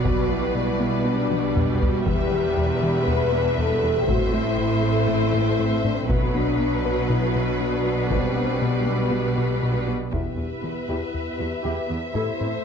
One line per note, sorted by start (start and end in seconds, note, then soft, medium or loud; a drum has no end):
0.00 2.02 B1 soft
0.00 2.03 B2 medium
0.00 4.08 B3 medium
0.00 2.07 B4 soft
0.00 4.08 B4 medium
0.00 2.06 D5 medium
0.00 2.07 D5 soft
0.04 0.20 B2 medium
0.04 4.08 G3 medium
0.04 0.29 F#4 medium
0.04 taiko medium
0.30 0.45 B3 soft
0.30 1.06 E4 medium
0.55 0.70 B2 medium
0.80 0.95 B3 medium
1.05 1.20 B2 medium
1.05 1.81 D4 medium
1.31 1.46 B2 medium
1.31 taiko high medium
1.56 1.71 B2 medium
1.56 taiko low-mid medium
1.82 1.97 B2 medium
1.82 2.07 F#4 medium
1.82 taiko low medium
2.06 4.08 E1 medium
2.06 2.21 E2 medium
2.06 4.08 E2 medium
2.06 3.08 G4 medium
2.06 4.05 B4 medium
2.06 6.06 E5 medium
2.06 6.10 E5 medium
2.06 taiko medium
2.32 2.47 E3 medium
2.57 2.72 E2 medium
2.83 2.98 E3 medium
3.07 3.23 E2 medium
3.07 3.57 B4 medium
3.32 3.48 E2 medium
3.58 3.73 E2 medium
3.58 3.96 A4 medium
3.83 3.98 E2 medium
3.97 4.09 G4 medium
4.07 6.06 A1 medium
4.07 4.23 A2 medium
4.07 6.06 A2 medium
4.07 6.10 A3 medium
4.07 6.10 C4 medium
4.07 4.32 F#4 medium
4.07 6.10 A4 medium
4.07 6.06 C5 medium
4.07 taiko medium
4.33 4.49 A3 medium
4.33 5.84 E4 medium
4.58 4.73 A2 medium
4.83 4.98 A3 medium
5.08 5.23 A2 medium
5.34 5.49 A2 medium
5.59 5.74 A2 medium
5.84 6.00 A2 medium
5.84 5.97 D4 medium
5.97 6.10 C4 medium
6.08 9.89 B1 medium
6.08 6.24 B2 medium
6.08 9.89 B2 medium
6.08 8.07 F#3 medium
6.08 6.34 B3 medium
6.08 10.13 D4 medium
6.08 8.11 F#4 medium
6.08 10.12 B4 medium
6.08 9.89 B4 medium
6.08 8.12 B4 medium
6.08 taiko medium
6.33 6.50 B3 medium
6.33 7.08 D4 medium
6.60 6.75 B2 medium
6.86 7.01 B3 medium
7.10 7.25 B2 medium
7.10 7.44 E4 medium
7.36 7.51 B2 medium
7.59 7.76 B2 medium
7.59 8.10 D4 medium
7.86 8.01 B2 medium
8.11 8.27 B2 medium
8.11 9.89 G3 soft
8.11 8.62 C4 medium
8.11 10.12 G4 medium
8.11 9.89 D5 soft
8.11 taiko medium
8.36 8.52 B3 medium
8.61 8.77 B2 medium
8.61 9.62 B3 medium
8.86 9.02 B3 medium
9.11 9.27 B2 medium
9.38 9.53 B2 medium
9.63 9.78 B2 medium
9.88 10.03 B2 medium
10.12 10.20 E2 soft
10.12 10.28 E2 medium
10.12 12.11 B3 medium
10.12 10.36 E4 soft
10.12 12.64 E4 medium
10.12 10.36 G4 soft
10.12 12.11 G4 medium
10.12 12.10 B4 soft
10.12 12.11 B4 medium
10.12 12.64 E5 soft
10.12 taiko soft
10.37 10.53 E2 soft
10.37 10.46 E2 soft
10.37 10.45 B3 soft
10.37 10.46 E4 soft
10.63 10.71 E2 soft
10.63 10.79 E3 soft
10.63 10.72 E4 soft
10.88 10.97 E2 soft
10.88 11.04 E2 medium
10.88 11.12 E4 soft
10.88 11.12 G4 soft
11.14 11.29 E2 soft
11.39 11.47 E2 soft
11.39 11.55 E2 soft
11.39 11.47 E4 soft
11.63 11.80 E2 medium
11.63 11.73 E2 soft
11.63 11.87 E4 soft
11.63 11.87 G4 soft
11.88 11.97 E2 soft
11.88 12.05 E3 soft
11.88 11.96 B3 soft
11.88 11.96 E4 soft
12.14 12.30 A2 medium
12.14 12.23 A2 medium
12.14 12.64 A3 medium
12.14 12.38 E4 soft
12.14 12.38 A4 soft
12.14 12.64 A4 medium
12.14 12.64 C5 medium
12.14 12.64 C5 soft
12.40 12.49 A2 soft
12.40 12.56 A2 soft
12.40 12.48 C4 soft
12.40 12.48 E4 soft